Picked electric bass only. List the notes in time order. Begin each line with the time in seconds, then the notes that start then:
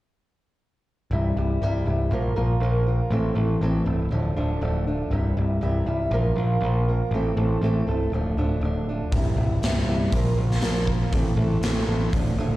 1.11 C1
1.37 C1
1.62 C1
1.86 C1
2.11 A#1
2.37 A#1
2.60 A#1
3.11 A1
3.35 A1
3.61 A1
3.86 C1
4.11 D1
4.37 D1
4.62 D1
5.11 C1
5.37 C1
5.61 C1
5.86 C1
6.11 A#1
6.36 A#1
6.61 A#1
7.11 A1
7.37 A1
7.62 A1
7.87 C1
8.12 D1
8.37 D1
8.61 D1
9.12 C1
9.36 C1
9.62 C1
9.86 C1
10.12 A#1
10.37 A#1
10.62 A#1
11.12 A1
11.36 A1
11.62 A1
11.87 A1
12.13 D1
12.37 D1